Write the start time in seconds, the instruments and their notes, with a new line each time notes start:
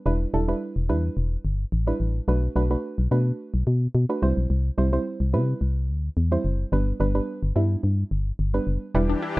0.06 fm bass E1, synth pluck G3 D4 E4 B4
0.33 fm bass E1, synth pluck G3 D4 E4 A4
0.48 synth pluck G3 D4 E4 B4
0.76 fm bass E1
0.89 fm bass E2, synth pluck G3 D4 E4 B4
1.17 fm bass E1
1.45 fm bass G1
1.72 fm bass A1
1.87 synth pluck G3 D4 E4 B4
2.00 fm bass A1
2.28 fm bass B1, synth pluck A3 D4 F#4 B4
2.56 fm bass B1, synth pluck A3 D4 F#4 B4
2.70 synth pluck A3 D4 F#4 B4
2.98 fm bass B1
3.11 fm bass B2, synth pluck A3 D4 F#4 B4
3.54 fm bass B1
3.67 fm bass B2
3.95 fm bass B2
4.09 synth pluck A3 D4 F#4 B4
4.22 fm bass C2, synth pluck G3 C4 E4 C5
4.37 fm bass B1
4.50 fm bass C2
4.78 fm bass C2, synth pluck G3 C4 E4 C5
4.92 synth pluck G3 C4 E4 C5
5.20 fm bass C2
5.33 fm bass C3, synth pluck G3 C4 E4 B4
5.61 fm bass C2
5.89 fm bass D2
6.17 fm bass E2
6.31 synth pluck G3 C4 E4 C5
6.45 fm bass F#1
6.72 fm bass G1, synth pluck G3 B3 D4 B4
7.00 fm bass G1, synth pluck G3 B3 D4 B4
7.15 synth pluck G3 B3 D4 B4
7.43 fm bass G1
7.56 fm bass G2, synth pluck G3 B3 D4 E4
7.83 fm bass G2
8.11 fm bass G1
8.39 fm bass G1
8.54 synth pluck G3 B3 D4 B4
8.67 fm bass F#1
8.95 fm bass E1, supersaw synth E3 D4 G4, synth pluck G3 D4 E4 B4, synth arpeggio sound G3
9.09 synth arpeggio sound D4
9.22 synth arpeggio sound E4